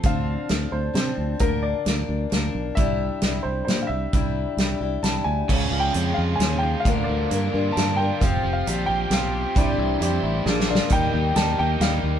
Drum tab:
CC |---------|---------|---------|---------|
HH |x--x--x--|x--x--x--|x--x--x--|x--x--x--|
SD |---o--o--|---o--o--|---o--o--|---o--o--|
BD |o--------|o--------|o--------|o--------|

CC |x--------|---------|---------|---------|
HH |---x--x--|x--x--x--|x--x--x--|x--x-----|
SD |------o--|------o--|------o--|------ooo|
BD |o--------|o--------|o--------|o--------|

CC |---------|
HH |x--x--x--|
SD |---o--o--|
BD |o--------|